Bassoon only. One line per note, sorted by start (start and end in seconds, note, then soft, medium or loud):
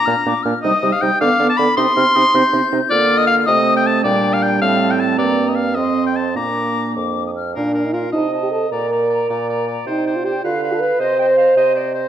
0.07 0.16 A#2 medium
0.26 0.34 A#2 medium
0.45 0.54 A#2 medium
0.64 0.73 C3 medium
0.82 0.91 C3 medium
1.02 1.11 C3 medium
1.21 1.29 D3 medium
1.39 1.48 D3 medium
1.59 1.67 D3 medium
1.78 1.86 C3 medium
1.97 2.05 C3 medium
2.16 2.24 C3 medium
2.34 2.42 C3 medium
2.53 2.61 C3 medium
2.73 2.81 C3 medium
2.91 3.44 D3 medium
3.48 4.03 C3 medium
4.04 4.61 A#2 medium
4.61 5.17 A2 medium
5.18 5.78 G2 medium
5.76 6.38 F2 medium
6.36 6.96 A#2 medium
6.96 7.55 F2 medium
7.56 8.07 A#2 medium
8.15 8.65 C3 medium
8.72 9.22 A#2 medium
9.30 9.80 A#2 medium
9.86 10.36 C3 medium
10.45 10.85 D3 medium
11.00 11.50 C3 medium
11.56 12.06 C3 medium